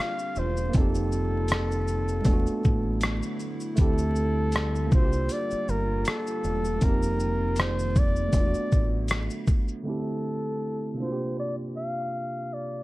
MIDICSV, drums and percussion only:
0, 0, Header, 1, 2, 480
1, 0, Start_track
1, 0, Tempo, 759494
1, 470, Time_signature, 4, 2, 24, 8
1, 8111, End_track
2, 0, Start_track
2, 0, Title_t, "Drums"
2, 0, Note_on_c, 9, 37, 105
2, 60, Note_off_c, 9, 37, 0
2, 119, Note_on_c, 9, 82, 46
2, 182, Note_off_c, 9, 82, 0
2, 225, Note_on_c, 9, 82, 41
2, 289, Note_off_c, 9, 82, 0
2, 360, Note_on_c, 9, 82, 47
2, 423, Note_off_c, 9, 82, 0
2, 464, Note_on_c, 9, 42, 51
2, 464, Note_on_c, 9, 82, 50
2, 470, Note_on_c, 9, 36, 99
2, 527, Note_off_c, 9, 42, 0
2, 527, Note_off_c, 9, 82, 0
2, 533, Note_off_c, 9, 36, 0
2, 599, Note_on_c, 9, 82, 57
2, 663, Note_off_c, 9, 82, 0
2, 708, Note_on_c, 9, 82, 53
2, 771, Note_off_c, 9, 82, 0
2, 937, Note_on_c, 9, 42, 58
2, 937, Note_on_c, 9, 82, 59
2, 959, Note_on_c, 9, 37, 109
2, 1000, Note_off_c, 9, 42, 0
2, 1000, Note_off_c, 9, 82, 0
2, 1022, Note_off_c, 9, 37, 0
2, 1084, Note_on_c, 9, 82, 43
2, 1148, Note_off_c, 9, 82, 0
2, 1187, Note_on_c, 9, 82, 49
2, 1250, Note_off_c, 9, 82, 0
2, 1317, Note_on_c, 9, 82, 40
2, 1381, Note_off_c, 9, 82, 0
2, 1420, Note_on_c, 9, 42, 59
2, 1420, Note_on_c, 9, 82, 65
2, 1423, Note_on_c, 9, 36, 88
2, 1483, Note_off_c, 9, 42, 0
2, 1483, Note_off_c, 9, 82, 0
2, 1486, Note_off_c, 9, 36, 0
2, 1559, Note_on_c, 9, 82, 41
2, 1622, Note_off_c, 9, 82, 0
2, 1671, Note_on_c, 9, 82, 38
2, 1675, Note_on_c, 9, 36, 78
2, 1734, Note_off_c, 9, 82, 0
2, 1738, Note_off_c, 9, 36, 0
2, 1901, Note_on_c, 9, 42, 64
2, 1901, Note_on_c, 9, 82, 62
2, 1917, Note_on_c, 9, 37, 110
2, 1964, Note_off_c, 9, 42, 0
2, 1964, Note_off_c, 9, 82, 0
2, 1981, Note_off_c, 9, 37, 0
2, 2039, Note_on_c, 9, 82, 49
2, 2102, Note_off_c, 9, 82, 0
2, 2146, Note_on_c, 9, 82, 42
2, 2209, Note_off_c, 9, 82, 0
2, 2277, Note_on_c, 9, 82, 45
2, 2341, Note_off_c, 9, 82, 0
2, 2381, Note_on_c, 9, 42, 51
2, 2381, Note_on_c, 9, 82, 56
2, 2389, Note_on_c, 9, 36, 102
2, 2445, Note_off_c, 9, 42, 0
2, 2445, Note_off_c, 9, 82, 0
2, 2452, Note_off_c, 9, 36, 0
2, 2518, Note_on_c, 9, 82, 56
2, 2581, Note_off_c, 9, 82, 0
2, 2627, Note_on_c, 9, 82, 54
2, 2690, Note_off_c, 9, 82, 0
2, 2857, Note_on_c, 9, 42, 60
2, 2857, Note_on_c, 9, 82, 53
2, 2880, Note_on_c, 9, 37, 109
2, 2920, Note_off_c, 9, 42, 0
2, 2920, Note_off_c, 9, 82, 0
2, 2943, Note_off_c, 9, 37, 0
2, 3004, Note_on_c, 9, 82, 45
2, 3067, Note_off_c, 9, 82, 0
2, 3108, Note_on_c, 9, 82, 50
2, 3109, Note_on_c, 9, 36, 114
2, 3171, Note_off_c, 9, 82, 0
2, 3172, Note_off_c, 9, 36, 0
2, 3239, Note_on_c, 9, 82, 39
2, 3303, Note_off_c, 9, 82, 0
2, 3344, Note_on_c, 9, 42, 67
2, 3344, Note_on_c, 9, 82, 62
2, 3407, Note_off_c, 9, 42, 0
2, 3407, Note_off_c, 9, 82, 0
2, 3481, Note_on_c, 9, 82, 39
2, 3545, Note_off_c, 9, 82, 0
2, 3593, Note_on_c, 9, 82, 40
2, 3657, Note_off_c, 9, 82, 0
2, 3824, Note_on_c, 9, 42, 63
2, 3824, Note_on_c, 9, 82, 61
2, 3841, Note_on_c, 9, 37, 102
2, 3888, Note_off_c, 9, 42, 0
2, 3888, Note_off_c, 9, 82, 0
2, 3904, Note_off_c, 9, 37, 0
2, 3962, Note_on_c, 9, 82, 47
2, 4026, Note_off_c, 9, 82, 0
2, 4070, Note_on_c, 9, 82, 42
2, 4133, Note_off_c, 9, 82, 0
2, 4201, Note_on_c, 9, 82, 47
2, 4265, Note_off_c, 9, 82, 0
2, 4305, Note_on_c, 9, 42, 54
2, 4305, Note_on_c, 9, 82, 54
2, 4310, Note_on_c, 9, 36, 105
2, 4368, Note_off_c, 9, 42, 0
2, 4368, Note_off_c, 9, 82, 0
2, 4373, Note_off_c, 9, 36, 0
2, 4441, Note_on_c, 9, 82, 52
2, 4504, Note_off_c, 9, 82, 0
2, 4549, Note_on_c, 9, 82, 51
2, 4612, Note_off_c, 9, 82, 0
2, 4778, Note_on_c, 9, 42, 57
2, 4778, Note_on_c, 9, 82, 60
2, 4801, Note_on_c, 9, 37, 108
2, 4842, Note_off_c, 9, 42, 0
2, 4842, Note_off_c, 9, 82, 0
2, 4864, Note_off_c, 9, 37, 0
2, 4924, Note_on_c, 9, 82, 43
2, 4987, Note_off_c, 9, 82, 0
2, 5029, Note_on_c, 9, 36, 94
2, 5029, Note_on_c, 9, 82, 52
2, 5092, Note_off_c, 9, 82, 0
2, 5093, Note_off_c, 9, 36, 0
2, 5157, Note_on_c, 9, 82, 42
2, 5220, Note_off_c, 9, 82, 0
2, 5262, Note_on_c, 9, 42, 61
2, 5262, Note_on_c, 9, 82, 63
2, 5263, Note_on_c, 9, 36, 87
2, 5326, Note_off_c, 9, 36, 0
2, 5326, Note_off_c, 9, 42, 0
2, 5326, Note_off_c, 9, 82, 0
2, 5399, Note_on_c, 9, 82, 42
2, 5463, Note_off_c, 9, 82, 0
2, 5510, Note_on_c, 9, 82, 37
2, 5514, Note_on_c, 9, 36, 79
2, 5573, Note_off_c, 9, 82, 0
2, 5577, Note_off_c, 9, 36, 0
2, 5741, Note_on_c, 9, 42, 64
2, 5741, Note_on_c, 9, 82, 63
2, 5757, Note_on_c, 9, 37, 115
2, 5804, Note_off_c, 9, 42, 0
2, 5804, Note_off_c, 9, 82, 0
2, 5820, Note_off_c, 9, 37, 0
2, 5879, Note_on_c, 9, 82, 49
2, 5943, Note_off_c, 9, 82, 0
2, 5986, Note_on_c, 9, 82, 45
2, 5988, Note_on_c, 9, 36, 85
2, 6049, Note_off_c, 9, 82, 0
2, 6051, Note_off_c, 9, 36, 0
2, 6119, Note_on_c, 9, 82, 44
2, 6182, Note_off_c, 9, 82, 0
2, 8111, End_track
0, 0, End_of_file